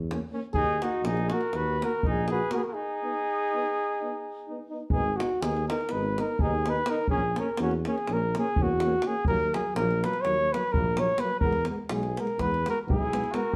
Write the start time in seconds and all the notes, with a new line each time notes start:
Already playing: E2
0.10 A#3 C#4, davul high
0.32 A#3 C#4
0.53 D#2 D#4 G#4, davul low
0.79 A#3 D#4 F#4, davul high
1.03 A#1 D#4 G#4, davul high
1.17 davul high
1.29 A#3 F#4, davul high
1.33 A#4
1.41 davul high
1.53 D#2 F#4 B4, davul high
1.80 A#3 F#4, davul high
1.84 A#4
2.03 A#1 D#4, davul low
2.08 G#4
2.28 A#3 F#4 G#4 B4, davul high
2.51 A#3 F#4 A#4, davul high
2.56 G#4 B4
2.62 F#4 A#4
2.67 F#4
2.74 D#4 G#4
3.02 B3 D#4
3.51 B3 D#4
4.00 B3 D#4
4.47 B3 D#4
4.69 B3 D#4
4.90 G#1 B3 D#4 G#4, davul low
5.16 D#4 F#4, davul high
5.21 B3
5.41 D#2 B3 D#4 G#4, davul high
5.57 davul high
5.68 B3 D#4 A#4, davul high
5.81 davul high
5.89 G#1 D#4 B4, davul high
5.93 B3
6.18 D#4 A#4, davul high
6.23 B3
6.39 D#2 D#4 G#4, davul low
6.44 B3
6.66 D#4 B4, davul high
6.70 B3
6.86 D#4 A#4, davul high
6.92 B3
7.08 A#1 A#3 C#4 G#4, davul low
7.36 A#3 C#4 A#4, davul high
7.57 E2 A#3 C#4, davul high
7.62 F#4
7.71 davul high
7.85 A#3 C#4, davul high
7.90 G#4
7.98 davul high
8.07 A#1 A#3 C#4, davul high
8.13 A#4
8.35 A#3 C#4 G#4, davul high
8.56 E2 C#4, davul low
8.60 A#3 F#4
8.80 davul high
8.84 A#3 C#4
9.02 C#4, davul high
9.06 A#3 G#4
9.25 D#2 F#3 A#4, davul low
9.29 A#3
9.54 F#3 A#3 G#4, davul high
9.75 A#1 F#3 A#3 A#4, davul high
9.91 davul high
10.04 F#3 A#3 B4, davul high
10.13 davul high
10.22 D#2 F#3 C#5, davul high
10.26 A#3
10.52 F#3 A#3 B4, davul high
10.72 A#1 F#3 A#3 A#4, davul low
10.97 F#3 A#3 C#5, davul high
11.18 A#3 B4, davul high
11.23 F#3
11.40 E2 B3 A#4, davul low
11.45 G#3
11.53 davul high
11.65 G#3, davul high
11.69 B3
11.89 B1 G#3 B3 G#4, davul high
12.03 davul high
12.17 G#3 B3 A#4, davul high
12.27 davul high
12.38 E2 G#3 B3 B4, davul high, davul low
12.54 davul high
12.65 G#3 B3 F#4, davul high
12.70 A#4
12.86 B1 G#3 B3 E4, davul low
12.90 G#4
13.12 G#3 B3, davul high
13.24 davul high
13.31 G#3 B3 F#4 A#4, davul high